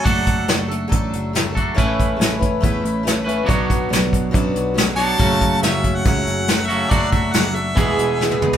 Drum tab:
HH |x-x-x-x-x-x-x-x-|x-x-x-x-x-x-x-x-|x-x-x-x-x-x-x-x-|x-x-x-x-x-x-x-x-|
SD |----o-------o---|----o-------o---|----o-------o---|----o-------o---|
T1 |----------------|----------------|----------------|----------------|
T2 |----------------|----------------|----------------|----------------|
FT |----------------|----------------|----------------|----------------|
BD |o-o-----o-----o-|o-o---o-o-------|o-o---o-o-------|o-o---o-o-------|

HH |x-x-x-x-x-x-----|
SD |----o-------o---|
T1 |-------------o--|
T2 |--------------o-|
FT |---------------o|
BD |o-o-----o-------|